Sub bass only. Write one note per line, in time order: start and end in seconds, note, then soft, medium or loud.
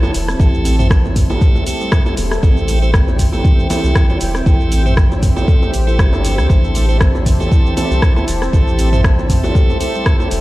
0.14 0.35 E1 medium
0.40 1.37 A1 loud
2.18 2.38 E1 medium
2.43 3.41 A1 loud
3.84 3.93 C2 medium
4.21 4.41 E1 medium
4.46 5.44 A1 loud
5.74 6.00 A1 medium
5.99 6.40 G1 medium
6.38 6.47 D2 medium
6.50 7.48 A1 loud
7.91 8.00 C2 medium
8.28 8.48 E1 medium
8.53 9.51 A1 loud
10.31 10.41 E1 medium